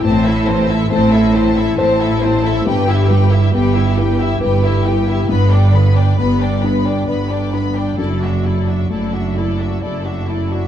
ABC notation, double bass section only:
X:1
M:3/4
L:1/8
Q:1/4=68
K:Em
V:1 name="Double bass section" clef=bass
A,,,2 A,,,2 A,,,2 | G,,,2 G,,,2 G,,,2 | G,,,2 G,,,2 G,,,2 | F,,,2 F,,,2 F,,,2 |]